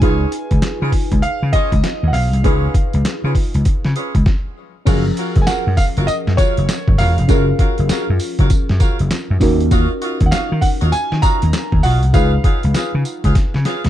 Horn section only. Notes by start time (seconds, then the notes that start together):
0.02 C#4 F4 G#4 B4 C#5
0.82 C#4 F4 G#4 B4 C#5
1.53 C#4 F4 G#4 B4 C#5
2.44 C#4 F4 G#4 B4 C#5
3.24 C#4 F4 G#4 B4 C#5
3.96 C#4 F4 G#4 B4 C#5
4.87 F4 F#4 A#4 C#5 F5
5.17 F4 F#4 A#4 C#5 F5
5.47 F4 F#4 A#4 C#5 F5
5.97 F4 F#4 A#4 C#5 F5
6.38 F4 F#4 A#4 C#5 F5
6.98 F4 F#4 A#4 C#5 F5
7.29 F4 F#4 A#4 C#5 F5
7.59 F4 F#4 A#4 C#5 F5
7.89 F4 F#4 A#4 C#5 F5
8.39 F4 F#4 A#4 C#5 F5
8.80 F4 F#4 A#4 C#5 F5
9.71 F4 F#4 C#5 D#5 F5
10.02 F4 F#4 C#5 D#5 F5
10.32 F4 F#4 C#5 D#5 F5
10.81 F4 F#4 C#5 D#5 F5
11.23 F4 F#4 C#5 D#5 F5
11.84 F4 F#4 C#5 D#5 F5
12.14 F4 G#4 B4 C#5 F5
12.44 F4 G#4 B4 C#5 F5
12.74 F4 G#4 B4 C#5 F5
13.24 F4 G#4 B4 C#5 F5
13.65 F4 G#4 B4 C#5 F5